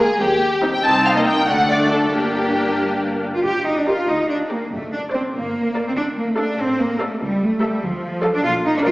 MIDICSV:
0, 0, Header, 1, 6, 480
1, 0, Start_track
1, 0, Key_signature, -2, "minor"
1, 0, Tempo, 421348
1, 950, Time_signature, 6, 3, 24, 8
1, 1437, Tempo, 435098
1, 4317, Tempo, 414365
1, 10159, End_track
2, 0, Start_track
2, 0, Title_t, "Violin section"
2, 0, Program_c, 0, 48
2, 0, Note_on_c, 0, 68, 73
2, 225, Note_on_c, 0, 67, 78
2, 233, Note_off_c, 0, 68, 0
2, 813, Note_off_c, 0, 67, 0
2, 834, Note_on_c, 0, 79, 65
2, 945, Note_on_c, 0, 81, 85
2, 950, Note_off_c, 0, 79, 0
2, 1190, Note_off_c, 0, 81, 0
2, 1197, Note_on_c, 0, 77, 67
2, 1245, Note_off_c, 0, 77, 0
2, 1326, Note_on_c, 0, 75, 58
2, 1372, Note_off_c, 0, 75, 0
2, 1433, Note_on_c, 0, 79, 71
2, 1667, Note_off_c, 0, 79, 0
2, 1672, Note_on_c, 0, 78, 75
2, 1911, Note_off_c, 0, 78, 0
2, 1915, Note_on_c, 0, 74, 66
2, 2148, Note_on_c, 0, 69, 59
2, 2153, Note_off_c, 0, 74, 0
2, 2386, Note_on_c, 0, 67, 58
2, 2391, Note_off_c, 0, 69, 0
2, 3608, Note_off_c, 0, 67, 0
2, 4320, Note_on_c, 0, 74, 47
2, 4499, Note_off_c, 0, 74, 0
2, 5042, Note_on_c, 0, 74, 47
2, 5226, Note_off_c, 0, 74, 0
2, 5768, Note_on_c, 0, 74, 45
2, 5953, Note_off_c, 0, 74, 0
2, 6496, Note_on_c, 0, 74, 50
2, 6677, Note_off_c, 0, 74, 0
2, 7221, Note_on_c, 0, 77, 47
2, 7401, Note_off_c, 0, 77, 0
2, 7940, Note_on_c, 0, 77, 54
2, 8119, Note_off_c, 0, 77, 0
2, 8656, Note_on_c, 0, 76, 57
2, 8832, Note_off_c, 0, 76, 0
2, 9370, Note_on_c, 0, 77, 56
2, 9545, Note_off_c, 0, 77, 0
2, 10074, Note_on_c, 0, 77, 58
2, 10159, Note_off_c, 0, 77, 0
2, 10159, End_track
3, 0, Start_track
3, 0, Title_t, "Violin section"
3, 0, Program_c, 1, 48
3, 0, Note_on_c, 1, 68, 66
3, 231, Note_off_c, 1, 68, 0
3, 237, Note_on_c, 1, 67, 62
3, 830, Note_off_c, 1, 67, 0
3, 833, Note_on_c, 1, 79, 57
3, 949, Note_off_c, 1, 79, 0
3, 952, Note_on_c, 1, 81, 71
3, 1193, Note_off_c, 1, 81, 0
3, 1198, Note_on_c, 1, 77, 60
3, 1314, Note_on_c, 1, 75, 47
3, 1317, Note_off_c, 1, 77, 0
3, 1436, Note_off_c, 1, 75, 0
3, 1442, Note_on_c, 1, 79, 63
3, 1672, Note_off_c, 1, 79, 0
3, 1677, Note_on_c, 1, 78, 64
3, 1914, Note_off_c, 1, 78, 0
3, 1921, Note_on_c, 1, 74, 57
3, 2156, Note_off_c, 1, 74, 0
3, 2161, Note_on_c, 1, 69, 54
3, 2398, Note_off_c, 1, 69, 0
3, 2404, Note_on_c, 1, 67, 50
3, 3616, Note_off_c, 1, 67, 0
3, 4315, Note_on_c, 1, 70, 47
3, 4497, Note_off_c, 1, 70, 0
3, 5040, Note_on_c, 1, 70, 45
3, 5225, Note_off_c, 1, 70, 0
3, 5771, Note_on_c, 1, 74, 50
3, 5954, Note_off_c, 1, 74, 0
3, 6496, Note_on_c, 1, 74, 49
3, 6677, Note_off_c, 1, 74, 0
3, 7217, Note_on_c, 1, 74, 49
3, 7399, Note_off_c, 1, 74, 0
3, 7948, Note_on_c, 1, 74, 54
3, 8123, Note_off_c, 1, 74, 0
3, 8661, Note_on_c, 1, 76, 55
3, 8835, Note_off_c, 1, 76, 0
3, 9368, Note_on_c, 1, 74, 61
3, 9544, Note_off_c, 1, 74, 0
3, 10084, Note_on_c, 1, 74, 61
3, 10159, Note_off_c, 1, 74, 0
3, 10159, End_track
4, 0, Start_track
4, 0, Title_t, "Viola section"
4, 0, Program_c, 2, 48
4, 0, Note_on_c, 2, 56, 63
4, 0, Note_on_c, 2, 58, 59
4, 171, Note_off_c, 2, 58, 0
4, 172, Note_off_c, 2, 56, 0
4, 711, Note_on_c, 2, 60, 56
4, 711, Note_on_c, 2, 63, 58
4, 889, Note_off_c, 2, 60, 0
4, 889, Note_off_c, 2, 63, 0
4, 953, Note_on_c, 2, 60, 50
4, 956, Note_on_c, 2, 63, 50
4, 1290, Note_off_c, 2, 60, 0
4, 1321, Note_on_c, 2, 58, 48
4, 1633, Note_off_c, 2, 63, 0
4, 1673, Note_on_c, 2, 57, 50
4, 1673, Note_on_c, 2, 62, 54
4, 1677, Note_off_c, 2, 58, 0
4, 2384, Note_off_c, 2, 62, 0
4, 2393, Note_off_c, 2, 57, 0
4, 2397, Note_on_c, 2, 58, 46
4, 2397, Note_on_c, 2, 62, 47
4, 3600, Note_off_c, 2, 58, 0
4, 3600, Note_off_c, 2, 62, 0
4, 4312, Note_on_c, 2, 67, 47
4, 4496, Note_off_c, 2, 67, 0
4, 5039, Note_on_c, 2, 67, 45
4, 5225, Note_off_c, 2, 67, 0
4, 5772, Note_on_c, 2, 72, 51
4, 5955, Note_off_c, 2, 72, 0
4, 6501, Note_on_c, 2, 70, 49
4, 6680, Note_off_c, 2, 70, 0
4, 7225, Note_on_c, 2, 69, 52
4, 7404, Note_off_c, 2, 69, 0
4, 7938, Note_on_c, 2, 69, 54
4, 8118, Note_off_c, 2, 69, 0
4, 8647, Note_on_c, 2, 69, 58
4, 8828, Note_off_c, 2, 69, 0
4, 9365, Note_on_c, 2, 69, 59
4, 9542, Note_off_c, 2, 69, 0
4, 10078, Note_on_c, 2, 70, 60
4, 10159, Note_off_c, 2, 70, 0
4, 10159, End_track
5, 0, Start_track
5, 0, Title_t, "Cello section"
5, 0, Program_c, 3, 48
5, 236, Note_on_c, 3, 39, 65
5, 800, Note_off_c, 3, 39, 0
5, 953, Note_on_c, 3, 36, 59
5, 1631, Note_off_c, 3, 36, 0
5, 1674, Note_on_c, 3, 38, 52
5, 2393, Note_off_c, 3, 38, 0
5, 2396, Note_on_c, 3, 43, 46
5, 3600, Note_off_c, 3, 43, 0
5, 3735, Note_on_c, 3, 65, 57
5, 3843, Note_off_c, 3, 65, 0
5, 3847, Note_on_c, 3, 67, 73
5, 4078, Note_off_c, 3, 67, 0
5, 4079, Note_on_c, 3, 63, 62
5, 4196, Note_off_c, 3, 63, 0
5, 4201, Note_on_c, 3, 62, 44
5, 4307, Note_on_c, 3, 65, 63
5, 4317, Note_off_c, 3, 62, 0
5, 4554, Note_on_c, 3, 63, 59
5, 4555, Note_off_c, 3, 65, 0
5, 4795, Note_on_c, 3, 62, 62
5, 4801, Note_off_c, 3, 63, 0
5, 4888, Note_off_c, 3, 62, 0
5, 5044, Note_on_c, 3, 58, 55
5, 5285, Note_off_c, 3, 58, 0
5, 5287, Note_on_c, 3, 57, 65
5, 5528, Note_off_c, 3, 57, 0
5, 5535, Note_on_c, 3, 62, 57
5, 5628, Note_off_c, 3, 62, 0
5, 5781, Note_on_c, 3, 60, 58
5, 5873, Note_off_c, 3, 60, 0
5, 6016, Note_on_c, 3, 58, 64
5, 6607, Note_off_c, 3, 58, 0
5, 6628, Note_on_c, 3, 60, 64
5, 6675, Note_off_c, 3, 60, 0
5, 6738, Note_on_c, 3, 62, 63
5, 6830, Note_off_c, 3, 62, 0
5, 6984, Note_on_c, 3, 58, 61
5, 7101, Note_off_c, 3, 58, 0
5, 7113, Note_on_c, 3, 57, 51
5, 7225, Note_on_c, 3, 62, 68
5, 7228, Note_off_c, 3, 57, 0
5, 7465, Note_off_c, 3, 62, 0
5, 7468, Note_on_c, 3, 60, 75
5, 7706, Note_off_c, 3, 60, 0
5, 7708, Note_on_c, 3, 58, 71
5, 7945, Note_off_c, 3, 58, 0
5, 7950, Note_on_c, 3, 57, 65
5, 8185, Note_off_c, 3, 57, 0
5, 8191, Note_on_c, 3, 55, 75
5, 8419, Note_off_c, 3, 55, 0
5, 8429, Note_on_c, 3, 57, 69
5, 8661, Note_off_c, 3, 57, 0
5, 8667, Note_on_c, 3, 55, 68
5, 8899, Note_off_c, 3, 55, 0
5, 8900, Note_on_c, 3, 53, 77
5, 9488, Note_off_c, 3, 53, 0
5, 9500, Note_on_c, 3, 62, 70
5, 9609, Note_off_c, 3, 62, 0
5, 9609, Note_on_c, 3, 65, 91
5, 9701, Note_off_c, 3, 65, 0
5, 9846, Note_on_c, 3, 63, 74
5, 9961, Note_off_c, 3, 63, 0
5, 9980, Note_on_c, 3, 62, 74
5, 10023, Note_off_c, 3, 62, 0
5, 10089, Note_on_c, 3, 65, 78
5, 10159, Note_off_c, 3, 65, 0
5, 10159, End_track
6, 0, Start_track
6, 0, Title_t, "Double bass section"
6, 0, Program_c, 4, 48
6, 235, Note_on_c, 4, 39, 59
6, 799, Note_off_c, 4, 39, 0
6, 956, Note_on_c, 4, 36, 60
6, 1633, Note_off_c, 4, 36, 0
6, 1679, Note_on_c, 4, 38, 51
6, 2396, Note_off_c, 4, 38, 0
6, 2398, Note_on_c, 4, 31, 52
6, 3601, Note_off_c, 4, 31, 0
6, 3844, Note_on_c, 4, 31, 58
6, 4403, Note_off_c, 4, 31, 0
6, 4557, Note_on_c, 4, 38, 47
6, 5137, Note_off_c, 4, 38, 0
6, 5288, Note_on_c, 4, 30, 64
6, 5866, Note_off_c, 4, 30, 0
6, 6023, Note_on_c, 4, 31, 51
6, 6592, Note_off_c, 4, 31, 0
6, 6741, Note_on_c, 4, 38, 59
6, 7312, Note_off_c, 4, 38, 0
6, 7457, Note_on_c, 4, 33, 51
6, 8028, Note_off_c, 4, 33, 0
6, 8182, Note_on_c, 4, 37, 70
6, 8745, Note_off_c, 4, 37, 0
6, 8894, Note_on_c, 4, 38, 65
6, 9455, Note_off_c, 4, 38, 0
6, 9600, Note_on_c, 4, 34, 77
6, 10159, Note_off_c, 4, 34, 0
6, 10159, End_track
0, 0, End_of_file